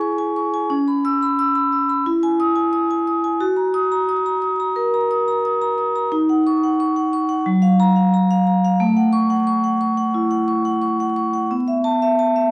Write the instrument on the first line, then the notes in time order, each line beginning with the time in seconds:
vibraphone
Already playing: G#4 G#5
0.00 C#6
0.18 G#5
0.36 C#6
0.54 G#5
0.70 C#4
0.88 B5
1.05 E6
1.23 B5
1.39 E6
1.55 B5
1.72 E6
1.89 B5
2.06 E4
2.23 G#5
2.40 D#6
2.56 G#5
2.73 D#6
2.91 G#5
3.07 D#6
3.24 G#5
3.41 F#4
3.57 A#5
3.74 D#6
3.92 A#5
4.09 D#6
4.26 A#5
4.42 D#6
4.60 A#5
4.76 A#4
4.94 A#5
5.11 D#6
5.28 A#5
5.45 D#6
5.61 A#5
5.78 D#6
5.96 A#5
6.12 D#4
6.29 F#5
6.47 C#6
6.63 F#5
6.80 C#6
6.96 F#5
7.13 C#6
7.29 F#5
7.46 F#3
7.62 F5
7.80 A#5
7.96 F5
8.14 A#5
8.31 F5
8.47 A#5
8.65 F5
8.80 A3
8.97 F#5
9.13 C#6
9.30 F#5
9.47 C#6
9.64 F#5
9.81 C#6
9.97 F#5
10.14 E4
10.31 F#5
10.48 C#6
10.65 F#5
10.82 C#6
11.00 F#5
11.16 C#6
11.34 F#5
11.51 B3
11.68 E5
11.84 A5
12.02 E5
12.19 A5
12.36 E5